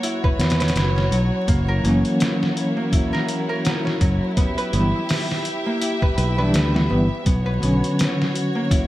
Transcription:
Already playing: F#3 A#3 C#4 F#4 C#5
0.03 E4, closed hi-hat
0.24 B4, kick
0.39 E2, snare, closed hi-hat
0.50 snare, closed hi-hat
0.60 B4, snare, closed hi-hat
0.68 snare, closed hi-hat
0.76 F#1, snare, closed hi-hat
0.96 C#4, snare
1.11 B1 F#3, closed hi-hat
1.47 F#1 A#3 E4, kick, closed hi-hat
1.68 A#4
1.84 F#1 E3 F#3 A#3 C#4, closed hi-hat
2.05 closed hi-hat
2.20 snare, closed hi-hat
2.43 snare
2.57 closed hi-hat
2.77 A#3
2.92 E4, kick, closed hi-hat
3.13 A#4, snare
3.28 closed hi-hat
3.49 A#4
3.65 snare, closed hi-hat
3.85 C#4, snare
4.01 F#1 F#3, kick, closed hi-hat
4.37 B3 G4 E5, kick, closed hi-hat
4.58 B4, closed hi-hat
4.73 G1 E3 G3 B3 E4, closed hi-hat
5.09 snare, open hi-hat
5.31 snare
5.45 closed hi-hat
5.66 A#3
5.81 E4, closed hi-hat
6.02 B4, kick
6.17 B1 B4, closed hi-hat
6.38 E3 G3 D4 B4
6.54 D2 B3, snare, closed hi-hat
6.74 E3 G3 B3 E4 B4, snare
6.90 G1 E3 G3 B3 E4
7.26 B1 B3 F#4 C#5, kick, closed hi-hat
7.46 B4
7.61 B1 D3 F#3 B3 C#4, closed hi-hat
7.84 closed hi-hat
7.99 snare, closed hi-hat
8.22 snare
8.35 closed hi-hat
8.55 A#3
8.71 E4, kick, closed hi-hat

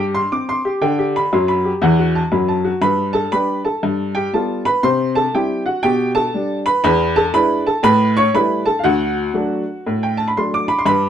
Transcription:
Already playing: G2 G4
0.14 C6
0.32 C4 D6
0.49 C6
0.65 G4
0.82 D3 G5
0.99 G4
1.16 B5
1.33 F#2 F#3 C6
1.48 B5
1.65 G4
1.82 E2 E3 F#5
1.99 F#4
2.15 A5
2.32 F#2 F#3 B5
2.48 A5
2.65 F#4
2.82 G2 B4 B5
3.13 A4 A5
3.32 G3 D4 G4 B4 B5
3.65 A4 A5
3.83 G2
4.15 G4 G5
4.33 G3 B3 F4 A4 A5
4.65 B4 B5
4.83 C3 C5 C6
5.15 A4 A5
5.34 G3 C4 E4 G4 G5
5.66 F#4 F#5
5.83 B2 G4 G5
6.15 A4 A5
6.34 G3 D4
6.66 B4 B5
6.84 E2 B4 B5
7.16 A4 A5
7.34 G#3 D4 E4 B4 B5
7.66 A4 A5
7.83 A2 B4 B5
8.17 C#5 C#6
8.34 G3 A3 E4 B4 B5
8.66 A4 A5
8.79 F5
8.84 D2 F#4 F#5
9.34 F#3 A3 D4
9.86 A2
10.03 G5
10.17 A5
10.28 B5
10.37 F#3 A3 D4 C6
10.54 D6
10.68 B5
10.78 C6
10.86 G2 B4 B5

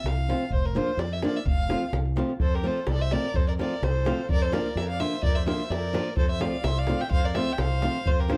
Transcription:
0.04 C2 F5, davul high
0.18 davul high
0.29 F3 A3 C4 F4, davul high
0.42 davul high
0.50 F1 C5, davul low
0.65 A#4
0.75 F3 A#3 D4 F4 C5, davul high
0.97 F2 D5, davul high
1.12 E5, davul high
1.22 F3 A#3 D4 F4 D5, davul high
1.35 E5, davul high
1.45 F1 F5, davul low
1.69 F3 A3 C4 F4, davul high
1.83 davul high
1.93 C2, davul high
2.05 davul high
2.16 F3 A3 C4 F4, davul high
2.29 davul high
2.40 F2 A4 C5, davul low
2.54 G4 A#4
2.63 F3 A3 C4 F4 A4
2.68 C5
2.87 C2 A4 D5, davul high
3.00 C5 E5, davul high
3.11 F3 A3 C4 F4 A#4 D5, davul high
3.24 davul high
3.34 F2 A4 C5, davul low
3.48 A#4 D5
3.58 F3 A3 C4 F4 A#4 D5, davul high
3.82 C2 A4 C5, davul high
3.96 davul high
4.05 F3 A3 C4 F4, davul high
4.19 davul high
4.29 F2 A#4 D5, davul low
4.42 A4 C5
4.52 F3 A#3 D4 F4 A#4 D5, davul high
4.75 F2 A#4 E5, davul high
4.88 D5 F5, davul high
5.00 F3 A#3 D4 F4 C5 E5, davul high
5.13 davul high
5.23 F2 A#4 D5, davul low
5.35 C5 E5, davul high
5.46 F3 A#3 D4 F4 C5 E5, davul high
5.60 C5 E5, davul high
5.69 F2 A#4 D5, davul high
5.93 F3 A#3 D4 F4, davul high
6.06 davul high
6.17 F2 A4 C5, davul low
6.31 C5 E5
6.40 F3 A3 C4 F4 D5 F5, davul high
6.64 C2 C5 E5, davul high
6.77 D5 F5, davul high
6.87 F3 A3 C4 F4, davul high
7.00 E5 G5, davul high
7.10 F2 C5 F5, davul low
7.24 A#4 D5
7.35 F3 A3 C4 F4 C5 E5, davul high
7.52 E5 G5
7.58 C2 C5 F5, davul high
7.72 davul high
7.82 F3 A3 C4 F4, davul high
7.95 davul high
8.06 F2 F4 C5, davul low
8.20 G4 A#4
8.28 F3 A#3 D4 F4 A4 C5, davul high

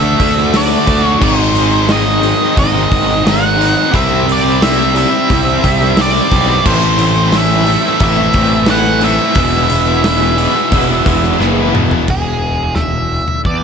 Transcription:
Already playing: D2 D3 A3 D4 E5
0.02 A3 D4 F#4
0.19 D2 D3 A3 D4 F#4, kick, open hi-hat
0.38 snare
0.52 D3 A3 D4 F#4, snare, open hi-hat
0.57 D5
0.71 snare
0.87 D2 D3 A3 D4 F#4, kick, open hi-hat
1.03 A3 D4 F#4 C#5
1.19 G#1 G#2 D#3 G#3 C4 D#4, kick, crash
1.23 C5
1.53 D#3 G#3 C4 D#4, open hi-hat
1.71 G#3 C4 D#4
1.88 G#2 D#3 G#3 C4 D#4 D#5, snare, open hi-hat
2.04 G#3 C4 D#4, snare
2.21 G#2 D#3 G#3 C4 D#4, open hi-hat
2.38 G#3 C4 D#4
2.56 G#1 G#2 D#3 G#3 D#5, kick, open hi-hat
2.72 G#3 C4 D#4
2.89 G#1 D#3 G#3 C4 D#4, kick, open hi-hat
3.11 snare
3.24 G#2 D#3 G#3 C4 D#4 F#5, snare, open hi-hat
3.57 G#2 D#3 G#3 C4 D#4
3.61 open hi-hat
3.74 G#3 C4 D#4
3.90 C3 G3 C4 E4, kick
3.94 C2 E5, open hi-hat
4.25 C3 G3 C4 E4
4.29 D5, open hi-hat
4.44 G3 C4 E4
4.60 C3 G3 C4 E4 E5, snare, open hi-hat
4.77 G3 C4 E4
4.93 C3 G3 C4 E4, open hi-hat
4.97 E5
5.10 G3 C4 E4
5.29 C2 C3 G3 C4, kick, open hi-hat
5.45 G3 C4 E4
5.63 C2 C3 G3 C4 E4, kick, open hi-hat
5.81 snare
5.97 C3 G3 C4 E4, snare, open hi-hat
6.01 D5
6.30 B1 C3 G3 C4 E4, kick, open hi-hat
6.47 G3 C4 E4
6.64 A1 A2 E3 A3 C4 E4 C5, kick, crash
6.98 E3 A3 C4 E4, open hi-hat
7.15 A3 C4 E4
7.32 A2 E3 A3 C4 E4, snare, open hi-hat
7.37 E5
7.49 A3 C4 E4
7.66 A2 E3 A3 C4 E4, open hi-hat
7.84 A3 C4 E4
8.00 A1 A2 E3 A3 E5, kick, open hi-hat
8.17 A3 C4 E4
8.33 A1 E3 A3 C4 E4, kick, open hi-hat
8.66 A2 E3 A3 C4 E4 F#5, snare, open hi-hat
8.85 snare
9.01 A2 E3 A3 C4 E4 E5, open hi-hat
9.19 A3 C4 E4
9.35 E1 E2 B2 E3 G#3 B3 E4, kick, open hi-hat
9.70 E3 G#3 B3 E4, open hi-hat
9.87 G#3 B3 E4
10.04 E2 B2 E3 G#3 B3 E4, snare, open hi-hat
10.21 G#3 B3 E4, snare
10.37 E2 B2 E3 G#3 B3 E4, open hi-hat
10.55 G#3 B3 E4
10.71 E1 E2 B2 E3, kick, open hi-hat
10.90 G#3 B3 E4
11.06 E1 E3 G#3 B3 E4, kick, open hi-hat
11.23 snare
11.39 F#1 E2 B2 E3 G#3 B3 E4, snare
11.73 E1 E2 B2 E3 G#3 B3 E4, mid tom
11.91 G#3 B3 E4, floor tom
12.08 E1 G#4, kick, floor tom, crash
12.75 E5, snare, floor tom
13.28 floor tom
13.45 E2 D5, kick

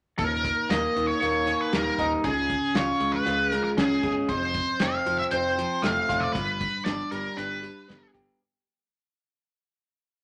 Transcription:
0.18 D#1 D#2 A#4, kick, closed hi-hat
0.45 kick, closed hi-hat
0.69 D#1 A#3 D#5, snare, closed hi-hat
0.96 D#1 D#3, closed hi-hat
1.07 C#5
1.21 D#1 A#3, closed hi-hat
1.46 D#3, closed hi-hat
1.61 B4
1.73 D#1 G3 A#4, snare, closed hi-hat
1.98 D#1 D#4, kick, closed hi-hat
2.24 C#2 C#3 G#4, kick, closed hi-hat
2.50 kick, closed hi-hat
2.74 C#2 F4 C#5, snare, closed hi-hat
3.00 C#2 G#3, closed hi-hat
3.12 B4
3.26 C#2 F4, closed hi-hat
3.51 G#3 A#4, closed hi-hat
3.64 A#4
3.77 C#2 C#4 G#4, snare, closed hi-hat
4.03 G1 G#4, kick, closed hi-hat
4.29 F1 F2 C5, kick, closed hi-hat
4.54 kick, closed hi-hat
4.80 F1 C4 F5, snare, closed hi-hat
5.06 F1 F3, closed hi-hat
5.18 E5
5.31 F1 C4 C5, closed hi-hat
5.58 F3, closed hi-hat
5.82 F1 A3 F5, snare, closed hi-hat
6.09 F1 F4, kick, snare, closed hi-hat
6.20 D5
6.32 G1 G2 B4, kick, closed hi-hat
6.61 kick, closed hi-hat
6.85 G1 D4 D5, snare, closed hi-hat
7.11 G1 G3 A#4, closed hi-hat
7.37 G1 D4 B4, closed hi-hat
7.63 G3, closed hi-hat
7.88 G1 B3, snare, closed hi-hat
8.14 G1 G4, kick, closed hi-hat

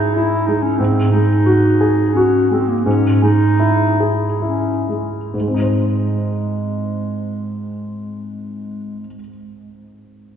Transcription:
Already playing: G#2 G#3 D#4 E4 G#4
0.16 E4
0.46 G#3 D#4
0.62 C#4
0.78 G#2 C4
1.11 G#3 D#4
1.46 F#4
1.81 G#4
2.14 C#4 F#4
2.51 G#3 C4
2.69 A#3
2.86 G#2 C#4
3.22 G#3 D#4
3.59 E4
4.00 G#4
4.42 C#4 E4
4.89 G#3
5.34 G#2 G#3
5.40 G#3
5.48 C4
5.54 D#4
5.62 C5

